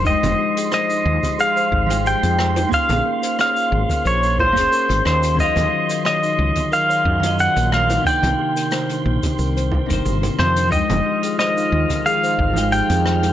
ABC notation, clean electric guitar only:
X:1
M:4/4
L:1/16
Q:"Swing 16ths" 1/4=90
K:Fm
V:1 name="Clean electric guitar"
[F,A,Eg]8- [F,A,Eg]3 [F,A,Eg]4- [F,A,Eg] | [B,DAc']8- [B,DAc']3 [B,DAc']4- [B,DAc'] | [E,_G,Df]8- [E,G,Df]3 [E,G,De]4- [E,G,De] | [C,E,B,=d]8- [C,E,B,d]3 [C,E,B,c]4- [C,E,B,c] |
[F,A,Eg]8- [F,A,Eg]3 [F,A,Eg]4- [F,A,Eg] |]